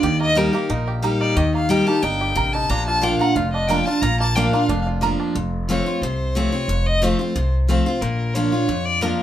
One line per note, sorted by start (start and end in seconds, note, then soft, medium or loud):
0.00 0.47 D#2 medium
0.00 0.67 D#3 medium
0.00 0.20 A#3 medium
0.00 0.87 G4 medium
0.00 1.03 A#4 medium
0.00 0.21 D5 medium
0.20 0.54 A#3 medium
0.20 0.39 D#5 loud
0.35 0.53 G3 loud
0.35 0.53 A#3 loud
0.35 0.69 D#4 medium
0.35 0.53 D#4 loud
0.35 0.52 G4 loud
0.35 0.88 A#4 loud
0.53 1.54 A#3 medium
0.53 0.70 D#4 medium
0.53 0.69 G4 medium
0.70 1.14 A#1 medium
0.70 1.33 A#2 medium
0.70 1.17 D#4 medium
0.88 1.33 G4 medium
1.02 1.35 G3 medium
1.02 1.35 A#3 medium
1.02 1.35 D#4 medium
1.02 1.35 G4 medium
1.02 2.37 A#4 medium
1.20 1.67 D#4 medium
1.20 1.38 D5 medium
1.36 1.80 D#2 medium
1.36 2.00 D#3 loud
1.36 1.84 G4 medium
1.36 1.54 D#5 medium
1.55 1.87 A#3 medium
1.55 1.72 F5 loud
1.69 1.86 G3 medium
1.69 1.87 A#3 loud
1.69 2.03 D#4 medium
1.69 1.87 D#4 loud
1.69 1.85 G4 loud
1.69 1.88 G5 loud
1.87 3.28 A#3 medium
1.87 2.02 D#4 medium
1.87 2.02 G4 medium
1.87 2.04 A5 loud
2.03 2.31 G1 medium
2.03 2.35 D4 medium
2.03 2.51 D#4 medium
2.03 2.55 G5 medium
2.21 2.67 G4 medium
2.35 2.65 A1 medium
2.35 2.68 C3 medium
2.35 3.21 A#4 medium
2.53 2.70 D#4 medium
2.53 2.71 A5 loud
2.69 3.14 A#1 loud
2.69 3.33 A#2 medium
2.69 3.03 D4 medium
2.69 2.86 A#5 loud
2.87 3.36 F4 medium
2.87 3.05 A5 loud
3.02 3.19 F3 medium
3.02 3.19 A#3 medium
3.02 3.20 D4 loud
3.02 3.50 D4 medium
3.02 3.18 F4 loud
3.02 3.18 G5 loud
3.19 3.36 D4 medium
3.19 3.35 F4 medium
3.19 3.67 A#4 medium
3.19 3.37 F#5 loud
3.36 3.80 F1 medium
3.36 3.99 F2 medium
3.36 3.87 F4 medium
3.36 3.52 F5 medium
3.53 4.00 D4 medium
3.53 3.69 D#5 medium
3.68 3.86 F3 medium
3.68 3.86 A#3 medium
3.68 3.87 D4 loud
3.68 3.86 F4 loud
3.68 4.17 A#4 medium
3.68 3.87 G5 loud
3.86 4.03 D4 medium
3.86 4.02 F4 medium
3.86 4.03 A5 loud
4.02 4.46 A#1 medium
4.02 4.66 A#2 loud
4.02 4.50 F4 medium
4.02 4.19 A#5 loud
4.20 4.52 A#3 medium
4.20 4.37 A5 loud
4.36 4.53 F3 medium
4.36 4.53 A#3 loud
4.36 4.68 D4 medium
4.36 4.53 D4 loud
4.36 4.52 F4 loud
4.36 4.53 G5 medium
4.53 4.99 A#3 medium
4.53 4.69 D4 medium
4.53 4.69 F4 medium
4.53 4.84 F5 loud
4.69 5.13 F1 medium
4.69 5.33 F2 loud
4.69 5.17 D4 medium
4.87 5.33 F4 medium
5.01 5.34 F3 medium
5.01 5.34 A#3 medium
5.01 5.34 D4 medium
5.01 5.35 F4 medium
5.01 5.36 A#4 medium
5.20 5.36 D4 medium
5.35 5.79 F1 medium
5.35 5.99 F2 loud
5.69 5.86 F3 loud
5.69 5.86 A3 loud
5.69 5.86 C4 loud
5.69 5.85 F4 loud
5.69 6.03 C#5 medium
5.86 6.02 C4 soft
5.86 6.02 F4 medium
6.02 6.46 C2 medium
6.02 6.66 C3 loud
6.02 6.38 C5 medium
6.35 6.52 F3 medium
6.35 6.53 A3 medium
6.35 6.53 C4 loud
6.35 6.51 F4 loud
6.35 6.87 C#5 loud
6.52 6.69 C4 medium
6.52 6.68 F4 medium
6.68 7.12 F1 medium
6.68 7.32 F2 loud
6.86 7.04 D#5 loud
7.02 7.19 F3 loud
7.02 7.19 A3 loud
7.02 7.19 C4 loud
7.02 7.18 F4 loud
7.02 7.53 C5 medium
7.19 7.35 C4 medium
7.19 7.34 F4 medium
7.36 7.80 C2 loud
7.36 7.99 C3 medium
7.68 7.85 F3 medium
7.68 7.85 A3 medium
7.68 7.86 C4 loud
7.68 7.85 F4 loud
7.68 8.03 C5 medium
7.86 8.02 C4 medium
7.86 8.01 F4 medium
8.01 8.46 A#1 loud
8.01 8.65 A#2 loud
8.01 8.36 A#4 medium
8.35 8.52 F3 loud
8.35 8.52 A#3 loud
8.35 8.52 D4 loud
8.35 8.51 F4 loud
8.35 8.87 C#5 medium
8.52 8.68 D4 medium
8.52 8.68 F4 medium
8.68 9.12 F2 medium
8.68 9.23 F2 medium
8.85 9.04 D5 loud
9.01 9.23 F3 medium
9.01 9.23 A#3 loud
9.01 9.23 D4 medium
9.01 9.23 F4 medium
9.01 9.23 A#4 medium